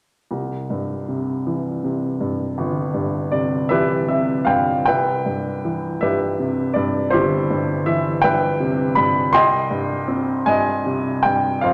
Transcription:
0.31 2.53 C2 soft
0.70 2.16 G2 soft
1.08 1.82 C3 soft
1.47 2.90 E3 soft
1.84 3.28 C3 soft
2.21 2.93 G2 soft
2.58 4.82 G1 soft
2.94 4.43 G2 soft
3.32 4.07 C3 soft
3.32 3.71 D5 medium
3.69 4.83 E3 soft
3.69 4.83 G4 soft
3.69 4.83 B4 soft
3.69 4.07 E5 medium
4.08 4.84 C3 soft
4.08 4.44 E5 medium
4.45 4.85 G2 soft
4.45 4.86 F5 medium
4.45 4.83 G5 medium
4.86 7.09 C2 soft
4.86 5.97 B4 soft
4.86 5.97 E5 soft
4.86 6.04 G5 medium
5.26 6.01 G2 soft
5.65 7.09 E3 soft
6.01 6.75 G2 soft
6.01 7.09 G4 soft
6.01 7.09 B4 soft
6.01 6.71 E5 medium
6.39 7.83 C3 soft
6.74 7.49 G2 soft
6.74 7.13 D5 medium
7.10 9.29 G1 soft
7.10 8.19 E4 soft
7.10 8.19 G4 soft
7.10 7.81 C5 medium
7.50 8.23 G2 soft
7.86 9.29 E3 soft
7.86 8.22 E5 medium
8.22 8.95 G2 soft
8.22 9.29 B4 soft
8.22 9.29 E5 soft
8.22 8.91 G5 medium
8.60 9.31 C3 soft
8.95 9.32 G2 soft
8.95 9.33 B5 medium
9.32 11.59 C2 medium
9.32 10.43 D#5 medium
9.32 10.43 G5 medium
9.32 10.50 C6 medium
9.71 10.45 G2 soft
10.08 11.59 C4 soft
10.46 11.24 G2 soft
10.46 11.60 D#5 medium
10.46 11.20 G#5 medium
10.86 11.61 C3 soft
11.23 11.62 G2 soft
11.23 11.63 G5 medium
11.61 11.73 F2 soft
11.61 11.73 C5 soft
11.61 11.73 F5 medium

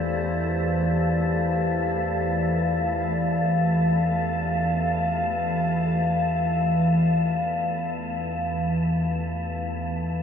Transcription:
0.00 10.23 E2 medium
0.00 10.23 E3 medium
0.00 10.23 A3 medium
0.00 10.23 G4 medium
0.00 5.54 C5 medium
0.00 10.23 D5 medium
0.00 10.23 F5 medium
0.00 10.23 A5 medium

